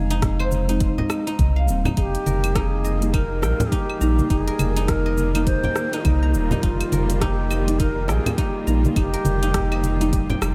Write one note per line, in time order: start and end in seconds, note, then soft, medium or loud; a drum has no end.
0.00 1.02 F1 medium
0.00 0.64 G#3 medium
0.00 0.65 C4 medium
0.00 0.10 D#4 medium
0.00 0.66 D#4 medium
0.00 2.09 G#4 loud
0.00 0.16 C5 medium
0.00 0.55 D#5 medium
0.00 1.01 F5 medium
0.10 0.69 D#4 loud
0.10 closed hi-hat soft
0.10 shaker soft
0.22 kick loud
0.22 cross-stick medium
0.22 closed hi-hat soft
0.22 low conga medium
0.22 shaker soft
0.40 2.38 C5 loud
0.40 claves medium
0.52 high conga medium
0.52 shaker medium
0.68 1.23 G#3 medium
0.68 1.23 C4 medium
0.68 1.26 D#4 medium
0.68 1.24 D#4 loud
0.68 closed hi-hat soft
0.68 high bongo soft
0.68 shaker soft
0.80 kick loud
0.80 closed hi-hat soft
0.80 shaker soft
0.98 2.76 D#5 medium
0.98 low conga medium
1.10 cross-stick medium
1.10 claves medium
1.10 shaker medium
1.27 1.85 D#4 medium
1.27 closed hi-hat soft
1.27 high bongo soft
1.27 shaker soft
1.39 1.70 C2 loud
1.39 kick loud
1.39 closed hi-hat soft
1.39 high conga medium
1.39 shaker soft
1.56 3.23 F5 medium
1.66 1.88 D#1 loud
1.66 2.97 G3 medium
1.66 2.98 A#3 medium
1.66 shaker medium
1.70 2.99 C4 medium
1.85 1.97 D#4 medium
1.85 high bongo soft
1.85 high conga medium
1.85 low conga medium
1.85 claves medium
1.85 shaker soft
1.97 2.17 F1 medium
1.97 10.55 D#3 medium
1.97 2.55 D#4 medium
1.97 2.03 G#4 medium
1.97 kick loud
1.97 closed hi-hat soft
1.97 shaker soft
2.02 2.57 G4 loud
2.15 closed hi-hat soft
2.26 3.45 F1 medium
2.26 10.55 F4 medium
2.26 4.38 A#4 medium
2.26 closed hi-hat soft
2.26 high conga medium
2.26 shaker medium
2.43 10.55 A#3 medium
2.43 closed hi-hat soft
2.43 claves medium
2.43 shaker soft
2.55 3.13 D#4 loud
2.55 3.15 G#4 medium
2.55 2.60 A#4 medium
2.55 kick loud
2.55 cross-stick medium
2.55 closed hi-hat medium
2.55 shaker soft
2.76 10.55 G3 medium
2.84 4.63 D#5 medium
2.84 shaker medium
3.01 3.11 G3 medium
3.01 3.11 A#3 medium
3.01 3.12 D#4 loud
3.01 closed hi-hat soft
3.01 shaker soft
3.13 3.72 D#4 loud
3.13 3.72 A#4 medium
3.13 kick loud
3.13 closed hi-hat medium
3.13 claves medium
3.13 shaker soft
3.42 3.54 A#1 medium
3.42 4.98 G5 medium
3.42 cross-stick medium
3.42 high bongo medium
3.42 shaker medium
3.60 closed hi-hat soft
3.60 low conga loud
3.60 shaker soft
3.71 4.30 D#4 medium
3.71 4.29 G4 medium
3.71 kick loud
3.71 closed hi-hat medium
3.71 shaker soft
3.90 claves medium
3.99 4.21 A#1 medium
3.99 5.30 G3 medium
3.99 5.31 A#3 medium
3.99 5.32 D#4 loud
3.99 5.41 A#5 medium
3.99 shaker medium
4.19 high conga medium
4.19 shaker soft
4.29 4.50 F1 loud
4.29 4.76 D#4 medium
4.29 4.40 G4 loud
4.29 kick loud
4.29 closed hi-hat soft
4.29 shaker soft
4.40 4.89 G#4 loud
4.48 6.60 A#4 loud
4.48 closed hi-hat soft
4.59 5.68 F1 medium
4.59 closed hi-hat soft
4.59 high conga medium
4.59 claves medium
4.59 shaker medium
4.77 5.35 D#4 loud
4.77 closed hi-hat soft
4.77 shaker soft
4.88 5.45 A#4 loud
4.88 kick loud
4.88 cross-stick medium
4.88 closed hi-hat medium
4.88 low conga medium
4.88 shaker soft
5.06 6.84 D#5 loud
5.17 high conga medium
5.17 shaker medium
5.34 5.89 G3 medium
5.34 5.89 A#3 medium
5.34 5.93 D#4 medium
5.34 5.90 D#4 loud
5.34 closed hi-hat soft
5.34 high bongo soft
5.34 claves medium
5.34 shaker soft
5.46 6.06 C5 loud
5.46 kick loud
5.46 closed hi-hat medium
5.46 shaker soft
5.64 7.20 G5 medium
5.64 low conga medium
5.76 cross-stick medium
5.76 shaker medium
5.93 6.51 D#4 medium
5.93 closed hi-hat soft
5.93 high bongo soft
5.93 shaker soft
6.04 6.36 C2 loud
6.04 6.64 D#4 loud
6.04 kick loud
6.04 closed hi-hat medium
6.04 high conga medium
6.04 claves medium
6.04 shaker soft
6.23 7.63 A#5 medium
6.34 6.54 D#1 loud
6.34 shaker medium
6.51 6.63 D#4 medium
6.51 high bongo medium
6.51 high conga medium
6.51 low conga medium
6.51 shaker soft
6.62 6.83 F1 loud
6.62 7.21 D#4 medium
6.62 7.22 F4 loud
6.62 kick loud
6.62 closed hi-hat medium
6.62 shaker soft
6.81 closed hi-hat soft
6.81 claves medium
6.92 8.11 F1 medium
6.92 9.05 A#4 medium
6.92 closed hi-hat soft
6.92 high conga medium
6.92 shaker medium
7.10 closed hi-hat soft
7.10 shaker soft
7.21 7.79 D#4 loud
7.21 7.81 G4 loud
7.21 kick loud
7.21 cross-stick medium
7.21 closed hi-hat medium
7.21 shaker soft
7.50 9.29 D#5 medium
7.50 claves medium
7.50 shaker medium
7.67 7.77 G3 medium
7.67 7.77 A#3 medium
7.67 7.78 D#4 loud
7.67 closed hi-hat soft
7.67 shaker soft
7.79 8.38 D#4 loud
7.79 8.10 A#4 loud
7.79 kick loud
7.79 closed hi-hat medium
7.79 shaker soft
8.08 8.19 A#1 medium
8.08 8.39 G#4 medium
8.08 9.64 G5 medium
8.08 cross-stick medium
8.08 high bongo medium
8.08 shaker medium
8.26 closed hi-hat soft
8.26 low conga medium
8.26 claves medium
8.26 shaker soft
8.38 8.96 D#4 loud
8.38 8.67 G4 medium
8.38 kick loud
8.38 closed hi-hat medium
8.38 shaker soft
8.65 8.87 A#1 medium
8.65 9.96 G3 medium
8.65 9.97 A#3 medium
8.65 9.98 D#4 loud
8.65 10.07 A#5 medium
8.65 shaker medium
8.85 high conga medium
8.85 shaker soft
8.95 9.16 F1 loud
8.95 9.42 D#4 medium
8.95 10.55 G4 loud
8.95 9.00 G#4 loud
8.95 kick loud
8.95 closed hi-hat medium
8.95 claves medium
8.95 shaker soft
9.13 10.55 A#4 loud
9.13 closed hi-hat soft
9.25 10.35 F1 medium
9.25 closed hi-hat soft
9.25 high conga medium
9.25 shaker medium
9.43 10.00 D#4 loud
9.43 closed hi-hat soft
9.43 shaker soft
9.54 kick loud
9.54 cross-stick medium
9.54 closed hi-hat medium
9.54 low conga medium
9.54 shaker soft
9.72 10.55 D#5 loud
9.72 claves medium
9.83 closed hi-hat soft
9.83 high conga medium
9.83 shaker medium
10.00 10.55 G3 medium
10.00 10.55 A#3 medium
10.00 10.55 D#4 medium
10.00 10.55 D#4 loud
10.00 closed hi-hat soft
10.00 high bongo soft
10.00 shaker soft
10.13 kick loud
10.13 closed hi-hat medium
10.13 shaker soft
10.30 10.55 G5 loud
10.30 low conga loud
10.42 10.55 F1 loud
10.42 cross-stick medium
10.42 closed hi-hat soft
10.42 claves medium
10.42 shaker medium